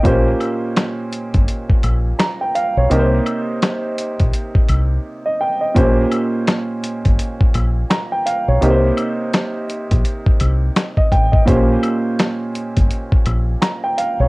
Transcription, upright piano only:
Already playing: D#5
0.03 A#2 A#3 C#4 G4 C5
2.19 A#5
2.41 G5
2.55 F5
2.77 C#5
2.90 C3 A#3 D#4 G4 A#4
2.99 C5
5.26 D#5
5.41 G5
5.61 D#5
5.74 A#2 A#3 C#4 G4 C5
7.90 A#5
8.12 G5
8.26 F5
8.48 C#5
8.61 C3 A#3 D#4 G4 A#4
8.70 C5
10.97 D#5
11.12 G5
11.32 D#5
11.46 A#2 A#3 C#4 G4 C5
13.62 A#5
13.84 G5
13.98 F5
14.20 C#5

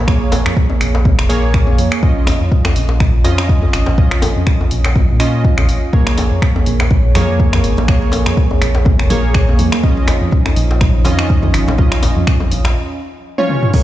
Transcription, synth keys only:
0.07 A#3 G#4 C#5
1.29 A#3 G#4 C#5
2.03 C#4 F4 D#5
3.24 C#4 F4 D#5
3.98 C#4 F4 D#5
5.20 C#4 F4 D#5
5.93 A#3 G#4 C#5
7.15 A#3 G#4 C#5
7.88 A#3 G#4 C#5
9.10 A#3 G#4 C#5
9.83 C#4 F4 D#5
11.05 C#4 F4 D#5
11.78 C#4 F4 D#5
13.38 C#4 F4 C#5
13.74 A#3 G#4 C#5

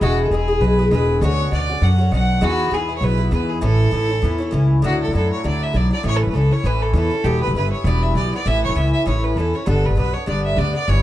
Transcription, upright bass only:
0.01 E1
0.30 E1
0.60 B1
0.91 E1
1.21 D2
1.52 D2
1.81 F#2
2.12 B1
2.42 E2
2.71 E2
3.01 B1
3.32 E2
3.62 A1
3.92 A1
4.23 E2
4.52 C#2
4.83 D2
5.08 D2
5.14 F#2
5.44 D2
5.74 B1
6.04 A1
6.27 A1
6.33 C#2
6.64 A1
6.93 E2
7.24 E1
7.47 E1
7.54 G1
7.84 E1
8.15 B1
8.46 A1
8.69 A1
8.76 C#2
9.06 A1
9.36 E2
9.67 G1
9.90 G1
9.97 B1
10.27 G1
10.57 D2
10.88 G1

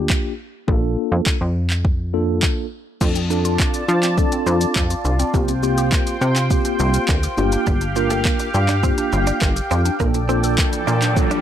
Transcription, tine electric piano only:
Already playing: A#3 D4 F4 G4
0.68 A#3 D4 F4 A4
2.13 A#3 D4 F4 A4
3.01 C4 D4 F4 A4
3.30 C4 D4 F4 A4
4.17 C4 D4 F4 A4
5.34 A#3 C4 F4 G4
5.63 A#3 C4 F4 G4
6.50 A#3 C4 F4 G4
7.37 A#3 D4 F4 G4
7.96 A#3 D4 F4 A#4
8.83 A#3 D4 F4 G4
10.00 A#3 D4 F4 A4
10.29 A#3 D4 F4 A4
11.16 A#3 D4 F4 A4

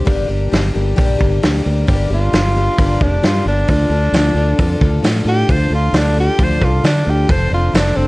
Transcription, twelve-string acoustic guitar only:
0.05 G2 D3 G3 A#3 D4 G4
0.28 G3 A#3 D4 G4
0.50 G3 A#3 D4 G4
0.74 G3 A#3 D4 G4
0.96 G2 D3 G3 A#3 D4 G4
1.19 G3 A#3 D4 G4
1.42 G3 A#3 D4 G4
1.64 G3 A#3 D4 G4
1.87 G2 D3 G3 A#3 D4 G4
2.10 G3 A#3 D4 G4
2.32 G3 A#3 D4 G4
2.55 G3 A#3 D4 G4
2.78 G2 D3 G3 A#3 D4 G4
3.01 G3 A#3 D4 G4
3.22 G3 A#3 D4 G4
3.46 G3 A#3 D4 G4
3.69 D3 F3 D4 F4 A4
3.91 D4 F4 A4
4.14 F3 D4 F4 A4
4.37 D4 F4 A4
4.59 D3 F3 D4 F4 A4
4.81 D4 F4 A4
5.03 F3 D4 F4 A4
5.27 D4 F4 A4
5.49 D3 F3 D4 F4 A4
5.72 D4 F4 A4
5.94 F3 D4 F4 A4
6.17 D4 F4 A4
6.38 D3 F3 D4 F4 A4
6.61 D4 F4 A4
6.83 F3 D4 F4 A4
7.05 D4 F4 A4
7.28 F3 C4 D4 A4
7.50 C4 D4 A4
7.72 F3 C4 D4 A4
7.95 C4 D4 A4

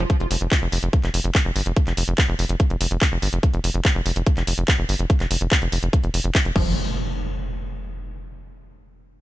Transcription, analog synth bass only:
0.20 F1
0.31 F1
0.41 F1
0.62 F1
0.72 F1
0.83 F1
1.04 F1
1.14 F1
1.24 F1
1.45 F1
1.56 G1
1.66 F1
1.87 F1
1.97 F1
2.08 F1
2.29 F1
2.39 F1
2.49 F1
2.70 F1
2.81 F1
2.91 F1
3.12 F1
3.22 G1
3.33 F1
3.54 F1
3.64 F1
3.74 F1
3.95 F1
4.06 F1
4.16 F1
4.37 F1
4.47 F1
4.58 F1
4.79 F1
4.89 G1
4.99 F1
5.20 F1
5.31 F1
5.41 F1
5.62 F1
5.72 F1
5.83 F1
6.04 F1
6.14 F1
6.24 F1
6.45 F1
6.56 F1

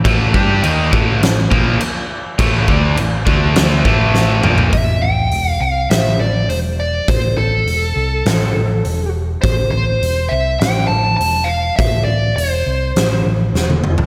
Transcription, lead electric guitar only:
4.73 E5
5.02 G5
5.49 F5
5.61 F5
5.90 E5
6.20 D5
6.49 C5
6.80 D5
7.08 C5
7.38 A4
9.42 C5
9.71 C5
10.29 E5
10.60 G5
10.87 A5
11.17 A5
11.44 F5
11.76 E5
12.04 D5
12.36 C5

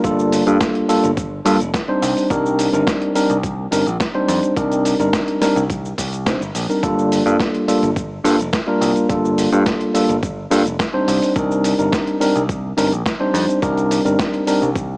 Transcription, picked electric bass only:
0.04 G1
0.47 G2
1.04 G1
1.46 G2
1.60 F1
2.02 C2
2.30 C2
2.73 G1
3.30 C2
3.72 G1
3.86 A#1
4.28 F2
4.57 C2
4.99 G1
5.56 C2
5.98 C2
6.41 G1
6.55 A#1
6.83 G1
7.26 G2
7.83 G1
8.24 G2
8.39 F1
8.81 C2
9.09 G1
9.53 G2
10.09 G1
10.51 G2
10.66 F1
11.08 C2
11.36 C2
11.79 G1
12.36 C2
12.78 G1
12.92 A#1
13.34 F2
13.62 C2
14.05 G1
14.62 C2

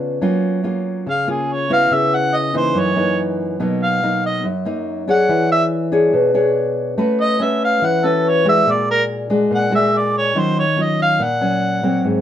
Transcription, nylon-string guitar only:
Already playing: C#3 B3 D4 F4
0.21 F#3 A#3 C#4 F4
0.63 A#3 C#4 F4
1.06 C#3
1.27 A#3 C#4 F4
1.70 B3 E4 F#4
1.91 C#3
2.54 E3 A#3 D#4
2.74 F#2
2.96 E3 A#3 D#4
3.60 B2 F#3 A#3 D#4
4.03 F#3 A#3 D#4
4.44 F#2
4.65 F#3 A#3 D#4
5.08 D4 G#4 C#5
5.29 E3
5.92 D4 G#4 C#5
6.13 B2
6.34 D4 G#4 C#5
6.98 A3 C#4 F#4 B4
7.40 C#4 F#4 B4
7.82 E3
8.04 C#4 F#4 B4
8.45 G#3 D4 F#4
8.66 A#2
9.30 G#3 D4 F#4
9.51 A#2
9.71 G#3 D4 F#4
10.35 D#3 F#3 C#4 F4
10.76 F#3 C#4 F4
11.19 A#2
11.41 F#3 C#4
11.83 F#3 A#3 C4
12.04 G#2

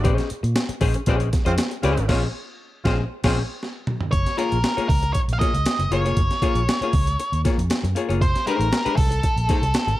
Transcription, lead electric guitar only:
4.11 C#5
4.38 A#4
4.89 A#4
5.13 C#5
5.33 F5
5.39 D#5
5.92 C#5
8.22 C5
8.47 A#4
8.97 A4

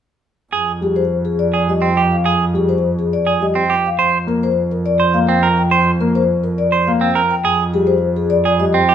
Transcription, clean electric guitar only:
0.53 G#4
1.54 G#4
1.82 C4
1.97 G4
2.25 G#4
3.27 G#4
3.55 C4
3.70 G4
3.99 C5
5.00 C5
5.29 C4
5.43 A#4
5.71 C5
6.72 C5
7.01 C4
7.15 A#4
7.45 G#4
8.45 G#4
8.74 C4
8.89 G4

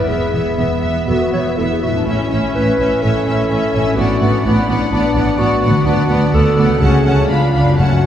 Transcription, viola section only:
0.08 B3
0.34 B3
0.58 B3
0.83 B3
1.08 B3
1.33 B3
1.58 B3
1.83 B3
2.07 C#4
2.31 C#4
2.56 C#4
2.80 C#4
3.04 C#4
3.27 C#4
3.51 C#4
3.75 C#4
3.98 B3
4.22 B3
4.45 B3
4.68 B3
4.91 B3
5.15 B3
5.39 B3
5.62 B3
5.85 B3
6.09 B3
6.33 B3
6.57 B3
6.81 C#4
7.05 C#4
7.29 D4
7.54 D4
7.79 C#4

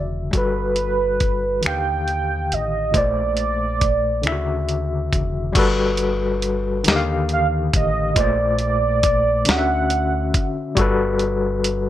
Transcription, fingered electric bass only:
Already playing: E1
0.34 G1
1.66 D#2
2.53 A1
2.95 A#1
4.26 D2
5.14 E1
5.56 G1
6.87 D#2
7.74 A1
8.17 A#1
9.49 D2
10.78 G1

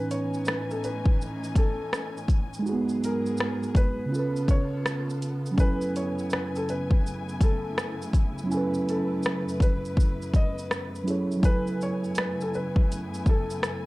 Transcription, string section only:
Already playing: A2 E3 B3 C#4 D#4 G#5
2.65 G#2 F#3 G#4
4.11 C#3 F4 A4
5.58 F#2 A3 E4 G#5
8.51 B4
11.44 F#2 C#3 A3 B3 E4 G#5

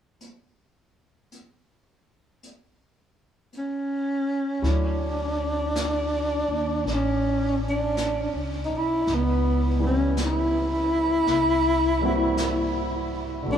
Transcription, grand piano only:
4.62 F#3 A3 E4 C#5
9.79 E3 G3 B3 C#4
9.84 E4
12.00 E3 G3 A#3 C4
12.05 F#4
13.43 D3 F#3
13.48 A3 C#5
13.53 E4

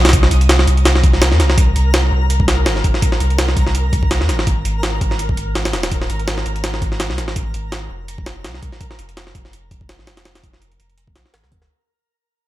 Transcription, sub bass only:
Already playing: C2
0.31 C2
0.67 C2
1.32 F2
1.40 C2
1.76 C2
2.12 C2
2.66 G1
2.84 G1
3.20 C2
3.57 C2
4.21 F2
4.29 G#1
4.65 G#1
5.01 G#1
5.37 G#1
5.73 D#1
6.10 G#1
6.46 G#1
7.10 C#2
7.18 G#1
7.54 G#1
7.90 F1
8.45 C2
8.63 C2
8.99 F1
9.35 F1
9.99 A#1
10.07 F1
10.43 F1
10.80 F1
11.16 C2
11.34 G#1
11.44 C2
11.52 F1

